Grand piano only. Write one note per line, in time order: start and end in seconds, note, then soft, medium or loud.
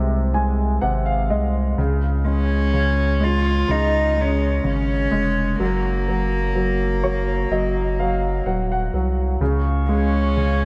0.00 0.82 C3 soft
0.00 0.34 G#3 soft
0.34 1.29 G#3 soft
0.34 0.79 G#5 medium
0.81 1.75 C3 soft
0.81 1.04 F#5 medium
1.06 1.29 F5 medium
1.30 1.77 G#3 soft
1.30 1.75 D#5 soft
1.78 2.72 C#3 medium
2.25 3.18 G#3 soft
2.73 3.67 C#3 soft
3.20 4.15 G#3 soft
3.68 4.62 C#3 soft
4.16 5.10 G#3 soft
4.64 5.56 C#3 soft
5.11 5.58 G#3 soft
5.60 6.07 F#3 medium
6.08 6.54 F#3 soft
6.55 7.03 F#3 soft
7.04 7.50 F#3 soft
7.04 7.47 C#5 medium
7.52 7.98 F#3 soft
7.52 7.95 D#5 medium
7.99 8.45 F#3 soft
7.99 8.43 F5 soft
8.46 8.92 F#3 soft
8.46 8.68 F#5 soft
8.72 9.38 F#5 medium
8.94 9.40 F#3 soft
9.41 10.35 C#3 medium
9.89 10.65 G#3 soft
10.37 10.65 C#3 soft